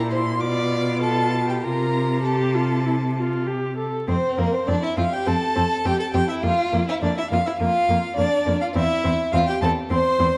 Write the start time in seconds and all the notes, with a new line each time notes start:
Already playing: A#2 E4 A#5
0.10 C5 C6
0.41 B2 F4 D5 D6
1.01 A4 A5
1.47 G4 G5
1.63 C3 F4 A#4 A#5
2.24 G4 A4 A5
2.55 F4
2.86 E4
3.16 F4
3.47 G4
3.77 A4
4.08 F2 C4 C5
4.38 F2 A#3 C4 A#4
4.52 C4 C5
4.67 F2 C4 D4 D5
4.82 E4 E5
4.97 F2 C4 F4 F5
5.12 G4 G5
5.26 F2 C4 A4 A5
5.56 F2 C4
5.85 F2 C4 G4 G5
5.99 A4 A5
6.14 F2 C4 G4 G5
6.28 E4 E5
6.43 F2 A#3 F4 F5
6.73 F2 A#3
6.88 E4 E5
7.02 F2 A#3 D4 D5
7.18 E4 E5
7.31 F2 A#3 F4 F5
7.46 E4 E5
7.60 F2 A#3 F4 F5
7.89 F2 A#3
8.17 F2 A#3 D4 D5
8.46 F2 A#3
8.61 F4 F5
8.74 E2 C4 E4 E5
9.04 E2 C4
9.32 E2 C4 F4 F5
9.47 G4 G5
9.62 E2 C4 A4 A5
9.90 E2 C4 C5 C6
10.19 E2 C4